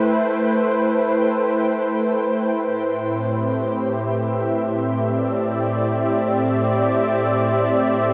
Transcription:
0.00 2.64 A3 medium
0.00 6.20 E4 medium
0.00 5.49 B4 medium
0.00 6.10 C5 medium
0.00 8.13 G5 medium
2.66 8.13 A2 medium
2.90 8.13 C4 medium
3.19 8.13 G4 medium
3.75 8.13 E5 medium
4.87 8.13 D5 medium

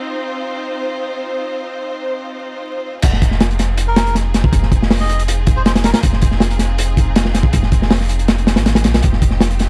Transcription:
0.00 2.99 C4 medium
0.00 2.99 D#4 medium
0.00 2.99 F4 medium
0.00 3.01 C5 medium
3.02 4.43 F1 loud
3.02 9.69 C4 medium
3.02 9.69 D#4 medium
3.02 9.69 F4 medium
3.02 9.01 G#4 medium
3.02 kick loud
3.02 closed hi-hat medium
3.02 crash medium
3.13 snare soft
3.22 kick medium
3.22 closed hi-hat medium
3.31 snare soft
3.40 snare loud
3.40 closed hi-hat medium
3.51 closed hi-hat soft
3.59 snare soft
3.59 closed hi-hat medium
3.77 closed hi-hat medium
3.88 4.16 A#4 medium
3.96 snare loud
3.96 closed hi-hat medium
4.07 closed hi-hat soft
4.15 snare soft
4.15 closed hi-hat medium
4.34 snare medium
4.34 closed hi-hat medium
4.44 kick medium
4.53 5.92 F1 loud
4.53 kick loud
4.53 closed hi-hat medium
4.62 snare soft
4.72 kick loud
4.72 closed hi-hat medium
4.82 snare medium
4.91 snare loud
4.91 open hi-hat medium
5.00 5.23 D#5 loud
5.00 snare soft
5.09 closed hi-hat medium
5.19 closed hi-hat soft
5.28 closed hi-hat medium
5.47 kick medium
5.47 closed hi-hat medium
5.56 5.62 C5 medium
5.66 5.72 C5 medium
5.66 snare loud
5.66 closed hi-hat medium
5.75 snare loud
5.75 closed hi-hat medium
5.84 5.91 A#4 medium
5.84 snare loud
5.84 closed hi-hat medium
5.94 6.00 A#4 medium
5.94 snare loud
5.94 closed hi-hat medium
6.03 7.43 F1 loud
6.03 kick loud
6.03 closed hi-hat loud
6.13 snare soft
6.21 kick loud
6.21 closed hi-hat medium
6.31 snare soft
6.40 snare loud
6.40 closed hi-hat medium
6.50 closed hi-hat soft
6.59 snare soft
6.59 closed hi-hat medium
6.78 closed hi-hat medium
6.97 kick medium
6.97 closed hi-hat medium
7.16 snare loud
7.16 closed hi-hat medium
7.25 snare medium
7.35 snare medium
7.35 closed hi-hat medium
7.43 kick loud
7.53 8.58 F1 loud
7.53 kick loud
7.53 closed hi-hat loud
7.63 snare soft
7.72 kick medium
7.72 closed hi-hat medium
7.82 snare medium
7.91 snare loud
7.91 open hi-hat medium
8.01 snare soft
8.09 closed hi-hat medium
8.19 closed hi-hat soft
8.28 snare loud
8.28 closed hi-hat medium
8.38 closed hi-hat soft
8.47 snare medium
8.47 closed hi-hat medium
8.56 8.86 G#1 medium
8.56 snare loud
8.56 closed hi-hat medium
8.66 snare medium
8.66 closed hi-hat medium
8.75 snare loud
8.75 closed hi-hat medium
8.84 9.01 A#1 medium
8.84 snare loud
8.84 closed hi-hat medium
8.94 snare loud
8.94 closed hi-hat medium
9.03 9.69 F1 loud
9.03 9.69 G4 medium
9.03 kick loud
9.03 closed hi-hat medium
9.13 snare soft
9.22 kick medium
9.22 closed hi-hat medium
9.31 snare soft
9.41 snare loud
9.41 closed hi-hat medium
9.51 closed hi-hat soft
9.59 snare soft
9.59 closed hi-hat medium

